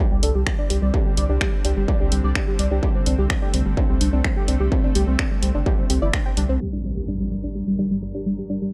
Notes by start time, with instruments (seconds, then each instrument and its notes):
Already playing: analog synth pad D3 G3 C4
0.00 synth arpeggio sound G3
0.11 analog synth bass C2, synth arpeggio sound G3, analog synth lead G4
0.23 analog synth bass C2, synth arpeggio sound D4, analog synth lead A4, open hi-hat
0.35 analog synth bass C2, synth arpeggio sound G3, analog synth lead G4
0.47 synth arpeggio sound G3, analog synth lead G4, finger snap, kick
0.59 synth arpeggio sound D4, analog synth lead D5
0.70 analog synth bass C2, synth arpeggio sound G3, analog synth lead G4, open hi-hat
0.82 analog synth bass C2, synth arpeggio sound G3, analog synth lead D5
0.94 synth arpeggio sound D4, analog synth lead G4, kick
1.06 synth arpeggio sound G3, analog synth lead G4
1.17 analog synth bass C2, synth arpeggio sound G3, analog synth lead D5, open hi-hat
1.29 analog synth bass C2, synth arpeggio sound D4, analog synth lead G4
1.41 synth arpeggio sound G3, analog synth lead G4, finger snap, kick
1.53 synth arpeggio sound G3
1.65 analog synth bass C2, synth arpeggio sound D4, analog synth lead G4, open hi-hat
1.77 analog synth bass G1, synth arpeggio sound G3, analog synth lead G4
1.88 synth arpeggio sound G3, analog synth lead D5, kick
2.00 analog synth bass C2, synth arpeggio sound D4, analog synth lead G4
2.12 analog synth bass C2, synth arpeggio sound G3, analog synth lead G4, open hi-hat
2.24 analog synth bass C2, synth arpeggio sound G3, analog synth lead D5
2.35 synth arpeggio sound D4, analog synth lead G4, finger snap, kick
2.48 synth arpeggio sound G3, analog synth lead G4
2.59 analog synth bass C2, synth arpeggio sound G3, analog synth lead D5, open hi-hat
2.71 analog synth bass C2, synth arpeggio sound D4, analog synth lead G4
2.83 synth arpeggio sound G3, analog synth pad A3, analog synth lead G4, kick
2.95 synth arpeggio sound G3, analog synth lead C4
3.06 analog synth bass C2, analog synth lead C4, synth arpeggio sound D4, open hi-hat
3.18 analog synth bass C2, synth arpeggio sound G3, analog synth lead G4
3.30 synth arpeggio sound G3, analog synth lead C4, finger snap, kick
3.42 synth arpeggio sound D4, analog synth lead G4
3.54 analog synth bass C2, synth arpeggio sound G3, analog synth lead C4, open hi-hat
3.66 analog synth bass G1, synth arpeggio sound G3
3.77 analog synth lead C4, synth arpeggio sound D4, kick
3.89 analog synth bass C2, synth arpeggio sound G3, analog synth lead C4
4.01 analog synth bass C2, synth arpeggio sound G3, analog synth lead D4, open hi-hat
4.13 analog synth bass C2, analog synth lead C4, synth arpeggio sound D4
4.24 synth arpeggio sound G3, analog synth lead C4, finger snap, kick
4.37 synth arpeggio sound G3, analog synth lead G4
4.48 analog synth bass C2, analog synth lead C4, synth arpeggio sound D4, open hi-hat
4.60 analog synth bass C2, synth arpeggio sound G3, analog synth lead G4
4.72 synth arpeggio sound G3, analog synth lead C4, kick
4.84 analog synth lead C4, synth arpeggio sound D4
4.95 analog synth bass C2, synth arpeggio sound G3, analog synth lead G4, open hi-hat
5.07 analog synth bass C2, synth arpeggio sound G3, analog synth lead C4
5.19 analog synth lead C4, synth arpeggio sound D4, finger snap, kick
5.31 synth arpeggio sound G3
5.43 analog synth bass C2, synth arpeggio sound G3, analog synth lead C4, open hi-hat
5.55 analog synth bass G1, analog synth lead C4, synth arpeggio sound D4
5.66 synth arpeggio sound G3, analog synth lead G4, kick
5.78 analog synth bass G1, synth arpeggio sound G3, analog synth lead C4
5.90 analog synth bass C2, analog synth lead C4, synth arpeggio sound G4, open hi-hat
6.02 analog synth bass G1, analog synth lead E4, synth arpeggio sound D5
6.13 analog synth lead C4, synth arpeggio sound D4, finger snap, kick
6.26 analog synth lead C4, synth arpeggio sound G5
6.37 analog synth bass C2, synth arpeggio sound G3, analog synth lead D4, open hi-hat
6.49 analog synth bass C2, analog synth lead C4, synth arpeggio sound C4
6.61 analog synth pad G2 G3 D4 A#4 D5, synth arpeggio sound G3, analog synth lead G4, impact
6.73 analog synth lead G3, synth arpeggio sound D4
6.84 analog synth lead G3, synth arpeggio sound G3
6.96 synth arpeggio sound G3, analog synth lead G4
7.08 analog synth lead G3, synth arpeggio sound D4
7.20 synth arpeggio sound G3, analog synth lead G4
7.32 synth arpeggio sound G3, analog synth lead G3
7.44 synth arpeggio sound D4
7.55 analog synth lead G3, synth arpeggio sound G3
7.67 analog synth lead G3, synth arpeggio sound G3
7.79 synth stab G2 D3 G3, analog synth lead D4, synth arpeggio sound D4
7.91 analog synth lead G3, synth arpeggio sound G3
8.02 synth arpeggio sound G3, analog synth lead G3
8.15 synth arpeggio sound D4, analog synth lead G4
8.26 synth arpeggio sound G3, analog synth lead G3
8.38 synth arpeggio sound G3, analog synth lead G4
8.50 analog synth lead G3, synth arpeggio sound D4
8.62 analog synth lead G3, synth arpeggio sound G3